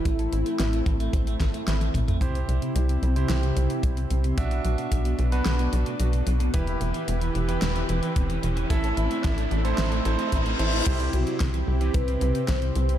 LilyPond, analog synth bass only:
\new Staff \with { instrumentName = "Analog synth bass" } { \clef bass \time 4/4 \key c \lydian \tempo 4 = 111 a,,8 a,,8 a,,8 a,,8 a,,8 a,,8 a,,8 a,,8 | c,8 c,8 c,8 c,8 c,8 c,8 c,8 c,8 | b,,8 b,,8 b,,8 b,,8 b,,8 b,,8 b,,8 b,,8 | e,,8 e,,8 e,,8 e,,8 e,,8 e,,8 e,,8 e,,8 |
a,,8 a,,8 a,,8 a,,8 a,,8 a,,8 a,,8 a,,8 | c,8 c,8 c,8 c,8 c,8 c,8 c,8 c,8 | }